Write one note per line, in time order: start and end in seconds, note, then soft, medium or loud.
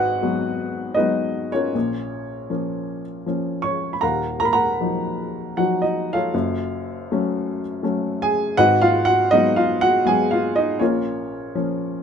0.00 1.70 G#1 medium
0.00 1.70 G#2 medium
0.00 1.76 F#4 medium
0.00 0.96 B4 medium
0.00 0.94 D#5 medium
0.00 1.76 F#5 loud
0.23 0.96 F#3 medium
0.23 0.97 G#3 soft
0.23 0.97 B3 medium
0.94 1.72 F#3 soft
0.94 1.51 D#4 medium
0.94 1.51 B4 medium
0.94 1.50 D#5 medium
0.99 1.72 G#3 soft
0.99 1.72 B3 medium
1.52 2.49 C#4 medium
1.52 3.01 F4 soft
1.52 3.02 A#4 medium
1.52 3.00 C#5 medium
1.75 3.99 A#1 medium
1.75 3.99 A#2 medium
2.50 3.24 F3 soft
2.50 3.24 A#3 soft
2.50 3.24 C#4 soft
3.26 4.00 F3 soft
3.26 4.01 A#3 soft
3.26 4.01 C#4 soft
3.62 3.93 C#5 medium
3.62 3.92 C#6 medium
3.93 4.01 B5 medium
4.01 6.30 D#1 medium
4.01 6.30 D#2 medium
4.01 4.38 A#4 medium
4.01 4.38 F5 medium
4.01 4.38 F#5 medium
4.01 4.38 A#5 medium
4.40 4.48 A#4 medium
4.40 4.47 A#5 medium
4.45 4.53 B5 medium
4.53 5.52 A#4 medium
4.53 5.52 F#5 medium
4.53 5.59 A#5 medium
4.80 5.55 F3 soft
4.80 5.55 F#3 soft
4.80 5.55 D#4 soft
5.57 6.31 F3 soft
5.57 6.31 F#3 soft
5.57 5.82 D#4 soft
5.57 5.81 F#4 medium
5.57 5.81 F#5 medium
5.82 6.13 D#4 medium
5.82 6.15 D#5 medium
6.13 7.61 F4 soft
6.13 7.61 A4 medium
6.13 7.61 C#5 medium
6.13 7.60 F5 medium
6.34 8.53 F#1 medium
6.34 8.54 F#2 medium
7.11 7.82 F#3 medium
7.11 7.82 A3 soft
7.11 7.83 C#4 medium
7.83 8.55 F#3 soft
7.83 8.55 A3 medium
7.83 8.55 C#4 medium
8.22 8.56 G#4 medium
8.22 8.59 G#5 loud
8.57 10.76 G#1 medium
8.57 10.76 G#2 medium
8.57 8.81 F#4 medium
8.57 8.80 B4 medium
8.57 8.80 D#5 medium
8.57 8.82 F#5 loud
8.82 9.05 F4 medium
8.82 9.07 F5 loud
9.05 9.29 F#4 medium
9.05 9.28 F#5 loud
9.31 10.04 F#3 medium
9.31 10.04 G#3 medium
9.31 10.05 B3 medium
9.31 9.55 D#4 medium
9.31 9.56 D#5 loud
9.56 9.80 F4 medium
9.56 9.82 F5 medium
9.81 10.05 F#4 medium
9.81 10.07 F#5 loud
10.05 10.78 F#3 soft
10.05 10.78 G#3 soft
10.05 10.78 B3 medium
10.05 10.30 G#4 medium
10.05 10.32 G#5 medium
10.31 10.55 F4 medium
10.31 10.56 F5 medium
10.56 10.80 D#4 medium
10.56 10.78 D#5 medium
10.79 12.03 A#1 medium
10.79 12.03 A#2 medium
10.79 11.54 C#4 soft
10.79 12.03 F4 medium
10.79 12.03 A#4 medium
10.79 12.03 C#5 medium
11.55 12.03 F3 soft
11.55 12.03 A#3 soft
11.55 12.03 C#4 medium